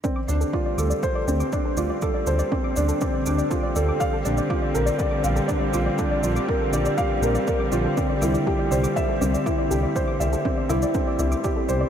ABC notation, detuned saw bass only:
X:1
M:4/4
L:1/8
Q:1/4=121
K:Dm
V:1 name="Detuned saw bass" clef=bass
z D,, z D,, z D,, z D,, | z D,, z D,, z D,, z D,, | z B,,, z B,,, z B,,, z B,,, | z B,,, z B,,, z B,,, z B,,, |
z C,, z C,, z C,, z C,, | z C,, z C,, z C,, z C,, |]